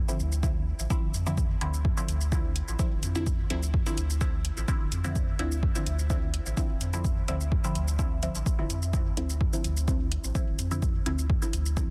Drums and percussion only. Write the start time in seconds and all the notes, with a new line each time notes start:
0.09 shaker
0.20 shaker
0.32 shaker
0.43 kick, shaker
0.79 shaker
0.90 kick, shaker
1.14 shaker
1.27 shaker
1.38 kick, shaker
1.61 closed hi-hat
1.74 shaker
1.85 kick
1.97 shaker
2.08 closed hi-hat, shaker
2.21 shaker
2.32 kick, shaker
2.56 closed hi-hat
2.68 shaker
2.79 kick, shaker
3.03 closed hi-hat, shaker
3.15 shaker
3.27 kick, shaker
3.50 closed hi-hat
3.63 shaker
3.74 kick
3.86 shaker
3.97 closed hi-hat, shaker
4.10 shaker
4.21 kick, shaker
4.45 closed hi-hat
4.57 shaker
4.68 kick, shaker
4.92 closed hi-hat, shaker
5.04 shaker
5.16 kick, shaker
5.39 closed hi-hat
5.52 shaker
5.63 kick
5.75 shaker
5.86 closed hi-hat, shaker
5.99 shaker
6.10 kick, shaker
6.34 closed hi-hat
6.46 shaker
6.57 kick, shaker
6.81 closed hi-hat, shaker
6.93 shaker
7.04 kick, shaker
7.28 closed hi-hat, shaker
7.41 shaker
7.52 kick
7.64 shaker
7.75 closed hi-hat, shaker
7.88 shaker
7.99 kick, shaker
8.23 closed hi-hat, shaker
8.35 shaker
8.46 kick, shaker
8.70 closed hi-hat, shaker
8.82 shaker
8.93 kick, shaker
9.17 closed hi-hat
9.30 shaker
9.41 kick
9.53 shaker
9.64 closed hi-hat, shaker
9.77 shaker
9.88 kick, shaker
10.12 closed hi-hat
10.24 shaker
10.35 kick, shaker
10.59 closed hi-hat, shaker
10.71 shaker
10.82 kick, shaker
11.06 closed hi-hat
11.19 shaker
11.30 kick
11.42 shaker
11.53 closed hi-hat, shaker
11.66 shaker
11.77 kick, shaker